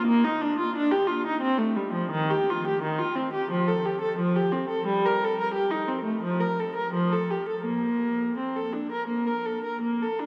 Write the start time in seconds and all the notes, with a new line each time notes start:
0.07 A#3
0.24 D#4
0.42 D4
0.59 F4
0.76 D4
0.91 G4
1.07 F4
1.26 D#4
1.41 C4
1.58 A3
1.76 G3
1.93 F3
2.11 D#3
2.30 G4
2.50 F4
2.67 G4
2.82 D#3
2.98 F4
3.16 C4
3.33 G4
3.51 F3
3.68 A4
3.86 G4
4.01 A4
4.19 F3
4.36 G4
4.52 C4
4.69 A4
4.86 G3
5.06 A#4
5.24 A4
5.41 A#4
5.54 G4
5.71 D#4
5.88 C4
6.04 A3
6.22 F3
6.40 A#4
6.60 A4
6.76 A#4
6.94 F3
7.12 A4
7.31 G4
7.49 A4
7.66 A#3
8.37 C4
8.56 A4
8.73 D4
8.92 A#4
9.07 A#3
9.27 A#4
9.46 A4
9.64 A#4
9.81 A#3
10.02 A4
10.19 D4